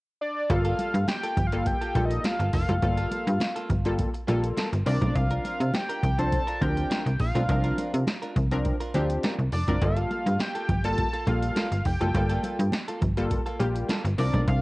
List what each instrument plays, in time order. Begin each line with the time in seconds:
0.21 analog synth lead D5
0.36 analog synth lead D5
0.49 fm bass G1, analog polysynth G3 A#3 F4 A4, analog synth lead F5, muted clean electric guitar stroke, kick, closed hi-hat, muted conga
0.65 clean electric guitar A#3 F4 A4, closed hi-hat
0.78 clean electric guitar A#3 F4 A4, closed hi-hat, muted conga
0.94 fm bass G2, closed hi-hat
1.08 analog synth lead G5, muted clean electric guitar stroke, snare, closed hi-hat, high conga
1.23 clean electric guitar A#3 F4 A4, closed hi-hat
1.37 fm bass G1, muted clean electric guitar stroke, kick, closed hi-hat, low conga
1.47 analog synth lead F5
1.52 analog polysynth G3 A#3 F4 A4, muted clean electric guitar stroke, closed hi-hat
1.66 analog synth lead G5, muted clean electric guitar stroke, kick, closed hi-hat, muted conga
1.81 clean electric guitar A#3 F4 A4, closed hi-hat
1.95 fm bass A#1, analog polysynth G3 A#3 F4 A4, kick, closed hi-hat, muted conga
2.05 analog synth lead D#5
2.11 muted clean electric guitar stroke, closed hi-hat
2.24 analog synth lead F5, muted clean electric guitar stroke, snare, closed hi-hat, high conga
2.39 fm bass G1, clean electric guitar A#3 F4 A4, closed hi-hat
2.53 fm bass F1, clean electric guitar A#3 F4 A4, analog synth lead F5, kick, open hi-hat
2.69 fm bass F#1, analog polysynth G3 A#3 F4 A4, muted clean electric guitar stroke, closed hi-hat, high conga
2.82 fm bass G1, analog polysynth G3 A#3 F4 A4, muted clean electric guitar stroke, kick, closed hi-hat, muted conga
2.98 clean electric guitar A#3 F4 A4, closed hi-hat
3.11 clean electric guitar A#3 F4 A4, closed hi-hat, muted conga
3.27 fm bass G2, closed hi-hat
3.40 muted clean electric guitar stroke, snare, closed hi-hat, high conga
3.56 clean electric guitar A#3 F4 A4, closed hi-hat
3.69 fm bass G1, muted clean electric guitar stroke, kick, closed hi-hat, low conga
3.85 analog polysynth G3 A#3 F4 A4, muted clean electric guitar stroke, closed hi-hat
3.98 kick, closed hi-hat, muted conga
4.14 muted clean electric guitar stroke, closed hi-hat
4.28 fm bass A#1, analog polysynth G3 A#3 F4 A4, clean electric guitar A#3 F4 A4, closed hi-hat, muted conga
4.43 muted clean electric guitar stroke, closed hi-hat
4.57 clean electric guitar A#3 F4 A4, snare, closed hi-hat, high conga
4.73 fm bass G1, muted clean electric guitar stroke, closed hi-hat
4.86 fm bass C2, analog polysynth F3 C4 D4 A#4, analog synth lead D5, muted clean electric guitar stroke, open hi-hat
5.02 fm bass B1, clean electric guitar D4 F4 A#4, analog synth lead D5, kick, closed hi-hat, high conga
5.15 fm bass C2, analog synth lead F5, muted clean electric guitar stroke, kick, closed hi-hat
5.31 clean electric guitar D4 F4 A#4, closed hi-hat
5.44 clean electric guitar D4 F4 A#4, closed hi-hat, muted conga
5.60 fm bass C3, muted clean electric guitar stroke, closed hi-hat
5.74 analog synth lead G5, muted clean electric guitar stroke, snare, closed hi-hat, high conga
5.89 clean electric guitar D4 F4 A#4, closed hi-hat
6.03 fm bass C2, kick, closed hi-hat, low conga
6.18 analog polysynth F3 C4 D4 C5, analog synth lead A5, muted clean electric guitar stroke, closed hi-hat
6.32 muted clean electric guitar stroke, kick, closed hi-hat, muted conga
6.47 clean electric guitar D4 F4 A#4, closed hi-hat
6.61 fm bass D2, analog polysynth F3 C4 D4 A#4, analog synth lead G5, kick, closed hi-hat, muted conga
6.77 muted clean electric guitar stroke, closed hi-hat
6.90 clean electric guitar D4 F4 A#4, snare, closed hi-hat, high conga
7.06 fm bass C2, muted clean electric guitar stroke, closed hi-hat
7.20 fm bass A#1, analog synth lead F5, muted clean electric guitar stroke, kick, open hi-hat
7.35 fm bass B1, analog polysynth F3 C4 D4 F4, clean electric guitar D4 F4 A#4, closed hi-hat, high conga
7.49 fm bass C2, analog polysynth F3 C4 D4 A#4, muted clean electric guitar stroke, kick, closed hi-hat
7.64 clean electric guitar D4 F4 A#4, closed hi-hat
7.77 clean electric guitar D4 F4 A#4, closed hi-hat, muted conga
7.93 fm bass C3, muted clean electric guitar stroke, closed hi-hat
8.07 muted clean electric guitar stroke, snare, closed hi-hat, high conga
8.22 clean electric guitar D4 F4 A#4, closed hi-hat
8.36 fm bass C2, muted clean electric guitar stroke, kick, closed hi-hat, low conga
8.51 analog polysynth F3 C4 D4 A#4, muted clean electric guitar stroke, closed hi-hat
8.65 muted clean electric guitar stroke, kick, closed hi-hat, muted conga
8.80 clean electric guitar D4 F4 A#4, closed hi-hat
8.94 fm bass D2, analog polysynth F3 C4 D4 G4, clean electric guitar D4 F4 A#4, closed hi-hat, muted conga
9.10 muted clean electric guitar stroke, closed hi-hat
9.23 clean electric guitar D4 F4 A#4, snare, closed hi-hat, high conga
9.39 fm bass C2, muted clean electric guitar stroke, closed hi-hat
9.52 fm bass F1, analog synth lead D5, muted clean electric guitar stroke, open hi-hat
9.68 fm bass F#1, analog polysynth F3 C4 D4 A#4, clean electric guitar D4 F4 A#4, analog synth lead D5, kick, closed hi-hat, high conga
9.82 fm bass G1, analog polysynth G3 A#3 F4 A4, analog synth lead F5, kick, closed hi-hat, muted conga
9.97 clean electric guitar A#3 F4 A4, closed hi-hat
10.11 clean electric guitar A#3 F4 A4, closed hi-hat, muted conga
10.26 fm bass G2, muted clean electric guitar stroke, closed hi-hat
10.39 analog synth lead G5, muted clean electric guitar stroke, snare, closed hi-hat, high conga
10.55 clean electric guitar A#3 F4 A4, closed hi-hat
10.69 fm bass G1, muted clean electric guitar stroke, kick, closed hi-hat, low conga
10.84 analog polysynth G3 A#3 F4 A4, analog synth lead A5, muted clean electric guitar stroke, closed hi-hat
10.98 muted clean electric guitar stroke, kick, closed hi-hat, muted conga
11.13 clean electric guitar A#3 F4 A4, closed hi-hat
11.27 fm bass A#1, analog polysynth G3 A#3 F4 A4, analog synth lead F5, muted clean electric guitar stroke, kick, closed hi-hat, muted conga
11.42 muted clean electric guitar stroke, closed hi-hat
11.56 clean electric guitar A#3 F4 A4, snare, closed hi-hat, high conga
11.72 fm bass G1, muted clean electric guitar stroke, closed hi-hat
11.85 fm bass F1, analog synth lead G5, muted clean electric guitar stroke, kick, open hi-hat
12.00 fm bass F#1, analog polysynth G3 A#3 F4 A4, clean electric guitar A#3 F4 A4, closed hi-hat, high conga
12.14 fm bass G1, analog polysynth G3 A#3 F4 A4, muted clean electric guitar stroke, kick, closed hi-hat, muted conga
12.29 clean electric guitar A#3 F4 A4, closed hi-hat
12.43 clean electric guitar A#3 F4 A4, closed hi-hat, muted conga
12.59 fm bass G2, muted clean electric guitar stroke, closed hi-hat
12.72 muted clean electric guitar stroke, snare, closed hi-hat, high conga
12.88 clean electric guitar A#3 F4 A4, closed hi-hat
13.01 fm bass G1, kick, closed hi-hat, low conga
13.17 analog polysynth G3 A#3 F4 A4, muted clean electric guitar stroke, closed hi-hat
13.31 muted clean electric guitar stroke, kick, closed hi-hat, muted conga
13.46 clean electric guitar A#3 F4 A4, closed hi-hat
13.60 fm bass A#1, analog polysynth G3 A#3 F4 G4, closed hi-hat, muted conga
13.75 muted clean electric guitar stroke, closed hi-hat
13.89 clean electric guitar A#3 F4 A4, snare, closed hi-hat, high conga
14.04 fm bass G1, muted clean electric guitar stroke, closed hi-hat
14.18 fm bass C2, analog polysynth F3 C4 D4 A#4, analog synth lead D5, muted clean electric guitar stroke, open hi-hat
14.33 fm bass B1, clean electric guitar D4 F4 A#4, analog synth lead D5, kick, closed hi-hat, high conga
14.47 fm bass C2, analog synth lead F5, muted clean electric guitar stroke, kick, closed hi-hat, muted conga